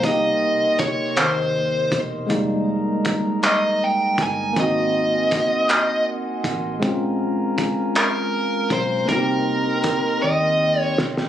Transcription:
Already playing: glass harmonica A#4
0.00 tine electric piano C3 A#3, glass harmonica D#5, kick, closed hi-hat
0.05 fingered electric bass C2, tine electric piano D#4 G4, lead electric guitar D#5, glass harmonica C6
0.79 lead electric guitar C#5, kick, closed hi-hat
1.17 fingered electric bass D#2, lead electric guitar C5, clap, closed hi-hat
1.92 fingered electric bass E1, kick, closed hi-hat
2.27 tine electric piano G#3 A#3, glass harmonica D#5, kick, closed hi-hat
2.31 fingered electric bass F1, tine electric piano G3 D#4, glass harmonica A#4 A#5
3.05 kick, closed hi-hat
3.43 lead electric guitar D#5, clap, closed hi-hat
3.84 lead electric guitar G5
4.18 fingered electric bass G1, kick, closed hi-hat
4.23 lead electric guitar G#5
4.53 tine electric piano A#3 C4, glass harmonica A#4 C6, kick, closed hi-hat
4.57 fingered electric bass G#1, tine electric piano D#4 F#4, lead electric guitar D#5, glass harmonica F#5 G#5
5.31 kick, closed hi-hat
5.69 fingered electric bass C2, clap, closed hi-hat
6.44 fingered electric bass A1, kick, closed hi-hat
6.79 tine electric piano G#3 C4, glass harmonica F5 A#5, kick, closed hi-hat
6.84 fingered electric bass A#1, tine electric piano C#4 F4
7.58 kick, closed hi-hat
7.95 lead electric guitar A#4, clap, closed hi-hat
8.70 fingered electric bass B1, lead electric guitar C5, kick, closed hi-hat
9.05 tine electric piano A#3 C4, lead electric guitar A#4, glass harmonica D#5, kick, closed hi-hat
9.09 fingered electric bass C2, tine electric piano D#4 F#4, glass harmonica G5 C6
9.20 tine electric piano G4
9.84 kick, closed hi-hat
10.22 fingered electric bass D#2, lead electric guitar D#5
10.80 lead electric guitar C#5
10.98 fingered electric bass E1, snare
11.17 snare

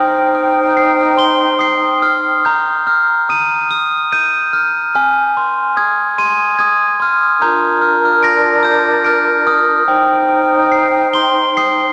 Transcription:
Already playing: flute section D#4 C5 G5, glockenspiel G5 D#6
0.35 glockenspiel D#6
0.77 glockenspiel C7
1.18 glockenspiel C6 G7
1.59 glockenspiel D#6 C7
2.02 glockenspiel D#6 F6
2.45 glockenspiel A#5 G6
2.87 glockenspiel F6
3.29 glockenspiel D#6 D#7
3.71 glockenspiel A#7
4.12 glockenspiel G6 D#7
4.53 glockenspiel F6
4.95 glockenspiel G#5 F6
5.37 glockenspiel C6
5.77 glockenspiel D#6 G#6
6.18 glockenspiel C6 D#7
6.59 glockenspiel D#6 G#6
7.00 glockenspiel C6 F6
7.41 flute section D4 F4 A#4, glockenspiel A#5 G6
7.81 glockenspiel F6
8.05 glockenspiel F6
8.23 glockenspiel A#6 D7
8.63 glockenspiel G6 A#7
9.05 glockenspiel F6 D7
9.47 glockenspiel D#6 F6
9.86 flute section D#4 C5 G5, glockenspiel G5
10.29 glockenspiel D#6
10.72 glockenspiel C7
11.13 glockenspiel C6 G7
11.57 glockenspiel D#6 C7

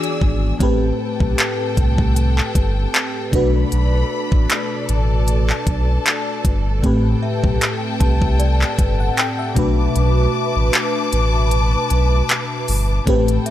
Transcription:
Already playing: fm electric piano E3 B3 D4 F#4 G#4, string section D5 G#5 E6
0.03 closed hi-hat
0.21 sub bass G#1, kick
0.59 sub bass A1, fm electric piano A2 A3 C4 G4 B4, string section A4 G5 A5, kick, closed hi-hat
1.20 sub bass B1, kick
1.38 clap, closed hi-hat
1.77 sub bass C2, kick, closed hi-hat
1.98 kick
2.16 closed hi-hat
2.38 clap
2.55 sub bass G1, kick, closed hi-hat
2.94 clap, closed hi-hat
3.31 sub bass B1, fm electric piano B2 A3 D4 F#4 B4, string section A4 D5 B5, kick, closed hi-hat
3.72 sub bass B1, closed hi-hat
4.32 sub bass A1, kick
4.50 clap, closed hi-hat
4.89 sub bass A1, string section A5, closed hi-hat
5.28 closed hi-hat
5.50 clap
5.67 sub bass B1, kick, closed hi-hat
6.06 clap, closed hi-hat
6.45 sub bass G1, kick, closed hi-hat
6.82 sub bass A1, fm electric piano A2 A3 C4 G4 B4, string section G5 A5, kick, closed hi-hat
7.22 synth bell E5
7.44 sub bass B1, kick
7.61 clap, closed hi-hat
8.00 sub bass C2, synth bell A5, kick, closed hi-hat
8.22 kick
8.39 synth bell D5, closed hi-hat
8.61 clap
8.79 sub bass G1, kick, closed hi-hat
9.00 fm electric piano F#5
9.18 fm electric piano G5, clap, closed hi-hat
9.39 fm electric piano E5
9.55 sub bass B1, fm electric piano B2 A3 D4 F#4 B4, string section B4 A5 D6, kick, closed hi-hat
9.96 sub bass B1, closed hi-hat
10.56 sub bass A1
10.73 clap, closed hi-hat
11.13 sub bass A1, closed hi-hat
11.51 closed hi-hat
11.90 sub bass B1, closed hi-hat
12.29 clap, closed hi-hat
12.68 sub bass G1, open hi-hat
13.06 sub bass A1, fm electric piano A2 A3 C4 G4 B4, string section A4 G5 A5, kick, closed hi-hat
13.28 closed hi-hat
13.46 synth bell E5, closed hi-hat

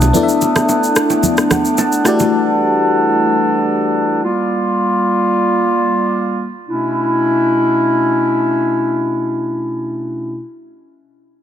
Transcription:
Already playing: fingered electric bass B1, woodwind section A3 B3 D4, fm electric piano D4 E4 A4 C#5
0.01 low bongo, shaker
0.13 fm electric piano B3 D4 E4 A4 D5, low conga, shaker
0.23 fm electric piano E5
0.29 shaker
0.41 low bongo, shaker
0.56 cross-stick, low bongo, shaker
0.69 high bongo, shaker
0.83 shaker
0.96 cross-stick, shaker
1.10 high bongo, shaker
1.23 low conga, shaker
1.37 cross-stick, shaker
1.51 fm electric piano F#5, cross-stick, low bongo, low conga, shaker
1.65 shaker
1.78 fm electric piano A5, high bongo, shaker
1.92 shaker
2.04 woodwind section E3 G3 A4 F#5, fm electric piano A3 E4 F#4 G4 D5 A5, cross-stick, shaker
2.19 low bongo, shaker
4.23 woodwind section G3 A#3 F4
6.69 woodwind section B2 A3 C#4 D4 E4

